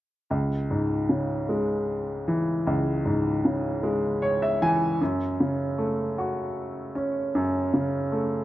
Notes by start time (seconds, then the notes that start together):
0.31 C#2
0.70 G#2
1.09 C#3
1.49 G#3
2.28 E3
2.67 C#2
3.05 G#2
3.45 C#3
3.83 G#3
4.22 C#5
4.42 E5
4.62 E3 G#5
5.01 F#2
5.40 C#3
5.78 A3
6.18 F#4
6.95 C#4
7.35 F#2
7.74 C#3
8.12 A3